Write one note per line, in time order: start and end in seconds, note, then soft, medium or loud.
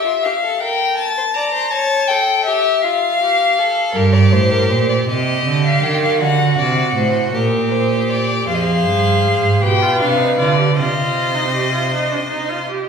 0.00 0.25 E5 medium
0.05 0.12 F4 medium
0.23 0.32 G4 medium
0.23 0.61 F5 medium
0.44 0.61 A4 medium
0.60 1.16 A#4 medium
0.60 0.97 G5 medium
0.97 1.35 A5 medium
1.17 1.24 C5 medium
1.34 1.53 D5 medium
1.34 1.72 A#5 medium
1.54 1.71 C5 medium
1.71 2.12 C#5 medium
1.71 2.10 A5 medium
2.08 2.48 A4 medium
2.08 2.44 G5 medium
2.45 2.85 G4 medium
2.45 2.84 E5 medium
2.82 3.21 F4 medium
2.82 3.94 F5 medium
3.21 3.60 G4 medium
3.58 3.97 A4 medium
3.94 4.33 G2 medium
3.94 5.08 G4 medium
3.94 4.14 A#4 medium
4.13 4.33 D5 medium
4.32 4.71 A2 medium
4.32 4.52 C5 medium
4.51 4.71 A#4 medium
4.70 5.07 A#2 medium
4.70 4.89 C5 medium
4.89 4.97 D5 medium
5.08 5.45 C3 medium
5.08 6.18 G4 medium
5.08 5.64 D#5 medium
5.46 5.82 D3 medium
5.65 5.85 F5 medium
5.83 6.22 D#3 medium
5.83 6.02 G5 medium
6.03 6.20 F5 medium
6.21 6.58 D3 medium
6.21 7.36 F#4 medium
6.21 6.57 F#5 medium
6.58 6.95 C3 medium
6.58 6.95 D5 medium
6.96 7.33 A2 medium
6.96 7.33 C5 medium
7.34 8.45 A#2 medium
7.34 8.47 G4 medium
7.34 7.73 A#4 medium
7.71 8.11 C5 medium
8.10 8.47 D5 medium
8.46 8.87 F2 medium
8.46 9.63 G#4 medium
8.46 9.63 C5 medium
8.46 8.56 F5 medium
8.54 8.63 D#5 medium
8.62 9.62 F5 medium
8.86 9.26 G2 medium
9.24 9.62 G#2 medium
9.62 10.00 B2 medium
9.62 9.83 G4 medium
9.62 10.76 B4 medium
9.62 10.00 G5 medium
9.82 10.02 F4 medium
10.00 10.39 C3 medium
10.00 10.20 D4 medium
10.00 10.38 F5 medium
10.18 10.37 D#4 medium
10.38 10.81 D3 medium
10.38 10.57 F4 medium
10.38 10.77 D5 medium
10.58 10.65 G4 medium
10.77 12.71 C3 medium
10.77 11.36 F4 medium
10.77 12.66 C5 medium
10.77 12.66 D#5 medium
11.34 11.53 D#4 medium
11.54 11.72 G4 medium
11.72 11.91 F4 medium
11.92 12.10 D#4 medium
12.11 12.19 D4 medium
12.31 12.51 D#4 medium
12.49 12.68 F4 medium
12.68 12.88 G4 medium